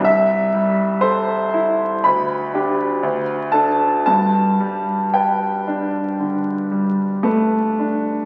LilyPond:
\new Staff \with { instrumentName = "Grand piano" } { \time 4/4 \key g \major \tempo 4 = 58 << { e''4 c''4 b''4. a''8 | a''4 g''2 a4 | } \\ { c,8 g8 a'8 e'8 d,8 <d' g'>8 d,8 <d' a'>8 | g,8 g8 b'8 d'8 d8 g8 b'8 d'8 | } >> }